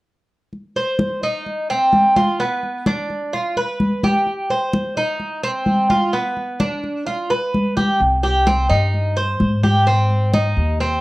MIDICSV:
0, 0, Header, 1, 4, 480
1, 0, Start_track
1, 0, Key_signature, -3, "minor"
1, 0, Tempo, 466926
1, 548, Time_signature, 4, 2, 24, 8
1, 11316, End_track
2, 0, Start_track
2, 0, Title_t, "Cuban tres"
2, 0, Program_c, 0, 25
2, 784, Note_on_c, 0, 72, 58
2, 1252, Note_off_c, 0, 72, 0
2, 1268, Note_on_c, 0, 63, 65
2, 1734, Note_off_c, 0, 63, 0
2, 1745, Note_on_c, 0, 60, 74
2, 2213, Note_off_c, 0, 60, 0
2, 2225, Note_on_c, 0, 65, 66
2, 2460, Note_off_c, 0, 65, 0
2, 2466, Note_on_c, 0, 59, 70
2, 2933, Note_off_c, 0, 59, 0
2, 2949, Note_on_c, 0, 62, 70
2, 3415, Note_off_c, 0, 62, 0
2, 3426, Note_on_c, 0, 65, 62
2, 3660, Note_off_c, 0, 65, 0
2, 3671, Note_on_c, 0, 71, 74
2, 4135, Note_off_c, 0, 71, 0
2, 4150, Note_on_c, 0, 67, 69
2, 4614, Note_off_c, 0, 67, 0
2, 4628, Note_on_c, 0, 72, 63
2, 5094, Note_off_c, 0, 72, 0
2, 5109, Note_on_c, 0, 63, 69
2, 5574, Note_off_c, 0, 63, 0
2, 5587, Note_on_c, 0, 60, 78
2, 6053, Note_off_c, 0, 60, 0
2, 6067, Note_on_c, 0, 65, 69
2, 6300, Note_off_c, 0, 65, 0
2, 6305, Note_on_c, 0, 59, 69
2, 6772, Note_off_c, 0, 59, 0
2, 6786, Note_on_c, 0, 62, 66
2, 7252, Note_off_c, 0, 62, 0
2, 7262, Note_on_c, 0, 65, 62
2, 7497, Note_off_c, 0, 65, 0
2, 7505, Note_on_c, 0, 71, 70
2, 7971, Note_off_c, 0, 71, 0
2, 7986, Note_on_c, 0, 67, 64
2, 8219, Note_off_c, 0, 67, 0
2, 8464, Note_on_c, 0, 67, 67
2, 8697, Note_off_c, 0, 67, 0
2, 8704, Note_on_c, 0, 60, 81
2, 8934, Note_off_c, 0, 60, 0
2, 8938, Note_on_c, 0, 63, 66
2, 9407, Note_off_c, 0, 63, 0
2, 9422, Note_on_c, 0, 72, 72
2, 9889, Note_off_c, 0, 72, 0
2, 9904, Note_on_c, 0, 67, 66
2, 10137, Note_off_c, 0, 67, 0
2, 10145, Note_on_c, 0, 60, 68
2, 10610, Note_off_c, 0, 60, 0
2, 10627, Note_on_c, 0, 63, 65
2, 11091, Note_off_c, 0, 63, 0
2, 11106, Note_on_c, 0, 60, 73
2, 11316, Note_off_c, 0, 60, 0
2, 11316, End_track
3, 0, Start_track
3, 0, Title_t, "Upright bass"
3, 0, Program_c, 1, 32
3, 8229, Note_on_c, 1, 36, 87
3, 8906, Note_off_c, 1, 36, 0
3, 8946, Note_on_c, 1, 43, 89
3, 9624, Note_off_c, 1, 43, 0
3, 9668, Note_on_c, 1, 44, 89
3, 10800, Note_off_c, 1, 44, 0
3, 10862, Note_on_c, 1, 39, 85
3, 11309, Note_off_c, 1, 39, 0
3, 11316, End_track
4, 0, Start_track
4, 0, Title_t, "Drums"
4, 541, Note_on_c, 9, 63, 34
4, 644, Note_off_c, 9, 63, 0
4, 781, Note_on_c, 9, 63, 30
4, 884, Note_off_c, 9, 63, 0
4, 1018, Note_on_c, 9, 63, 79
4, 1120, Note_off_c, 9, 63, 0
4, 1262, Note_on_c, 9, 63, 33
4, 1365, Note_off_c, 9, 63, 0
4, 1503, Note_on_c, 9, 63, 34
4, 1606, Note_off_c, 9, 63, 0
4, 1748, Note_on_c, 9, 63, 31
4, 1851, Note_off_c, 9, 63, 0
4, 1981, Note_on_c, 9, 63, 74
4, 2083, Note_off_c, 9, 63, 0
4, 2224, Note_on_c, 9, 63, 72
4, 2327, Note_off_c, 9, 63, 0
4, 2466, Note_on_c, 9, 63, 35
4, 2568, Note_off_c, 9, 63, 0
4, 2705, Note_on_c, 9, 63, 30
4, 2808, Note_off_c, 9, 63, 0
4, 2942, Note_on_c, 9, 63, 89
4, 3045, Note_off_c, 9, 63, 0
4, 3188, Note_on_c, 9, 63, 33
4, 3291, Note_off_c, 9, 63, 0
4, 3429, Note_on_c, 9, 63, 30
4, 3532, Note_off_c, 9, 63, 0
4, 3666, Note_on_c, 9, 63, 33
4, 3769, Note_off_c, 9, 63, 0
4, 3905, Note_on_c, 9, 63, 80
4, 4008, Note_off_c, 9, 63, 0
4, 4145, Note_on_c, 9, 63, 76
4, 4248, Note_off_c, 9, 63, 0
4, 4385, Note_on_c, 9, 63, 33
4, 4488, Note_off_c, 9, 63, 0
4, 4626, Note_on_c, 9, 63, 31
4, 4728, Note_off_c, 9, 63, 0
4, 4866, Note_on_c, 9, 63, 81
4, 4969, Note_off_c, 9, 63, 0
4, 5108, Note_on_c, 9, 63, 32
4, 5211, Note_off_c, 9, 63, 0
4, 5342, Note_on_c, 9, 63, 35
4, 5445, Note_off_c, 9, 63, 0
4, 5587, Note_on_c, 9, 63, 34
4, 5690, Note_off_c, 9, 63, 0
4, 5821, Note_on_c, 9, 63, 73
4, 5924, Note_off_c, 9, 63, 0
4, 6065, Note_on_c, 9, 63, 76
4, 6167, Note_off_c, 9, 63, 0
4, 6309, Note_on_c, 9, 63, 34
4, 6411, Note_off_c, 9, 63, 0
4, 6548, Note_on_c, 9, 63, 29
4, 6651, Note_off_c, 9, 63, 0
4, 6787, Note_on_c, 9, 63, 83
4, 6889, Note_off_c, 9, 63, 0
4, 7029, Note_on_c, 9, 63, 33
4, 7132, Note_off_c, 9, 63, 0
4, 7274, Note_on_c, 9, 63, 31
4, 7377, Note_off_c, 9, 63, 0
4, 7513, Note_on_c, 9, 63, 35
4, 7616, Note_off_c, 9, 63, 0
4, 7755, Note_on_c, 9, 63, 76
4, 7858, Note_off_c, 9, 63, 0
4, 7993, Note_on_c, 9, 63, 75
4, 8095, Note_off_c, 9, 63, 0
4, 8231, Note_on_c, 9, 63, 36
4, 8334, Note_off_c, 9, 63, 0
4, 8466, Note_on_c, 9, 63, 33
4, 8569, Note_off_c, 9, 63, 0
4, 8706, Note_on_c, 9, 63, 82
4, 8809, Note_off_c, 9, 63, 0
4, 8948, Note_on_c, 9, 63, 33
4, 9051, Note_off_c, 9, 63, 0
4, 9190, Note_on_c, 9, 63, 34
4, 9293, Note_off_c, 9, 63, 0
4, 9424, Note_on_c, 9, 63, 34
4, 9527, Note_off_c, 9, 63, 0
4, 9663, Note_on_c, 9, 63, 81
4, 9766, Note_off_c, 9, 63, 0
4, 9907, Note_on_c, 9, 63, 73
4, 10010, Note_off_c, 9, 63, 0
4, 10146, Note_on_c, 9, 63, 33
4, 10248, Note_off_c, 9, 63, 0
4, 10385, Note_on_c, 9, 63, 32
4, 10488, Note_off_c, 9, 63, 0
4, 10625, Note_on_c, 9, 63, 81
4, 10728, Note_off_c, 9, 63, 0
4, 10867, Note_on_c, 9, 63, 31
4, 10969, Note_off_c, 9, 63, 0
4, 11105, Note_on_c, 9, 63, 33
4, 11208, Note_off_c, 9, 63, 0
4, 11316, End_track
0, 0, End_of_file